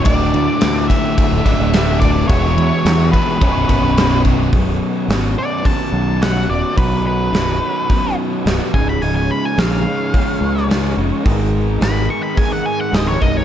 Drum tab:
RD |x-x-x-x-x-x-x-x-|x-x-x-x-x-x-x-x-|----------------|----------------|
HH |----------------|----------------|o---o---o---o---|o---o---o---o---|
SD |----o-------o---|----o-------o---|----o-------o---|----o-------o---|
BD |o-----o-o-o---o-|o-----o-o-o---o-|o-------o-------|o-------o-----o-|

RD |----------------|----------------|
HH |o---o---o---o---|o---o---o---o---|
SD |----o------oo---|----o-------o---|
BD |--------o-------|o-------o-----o-|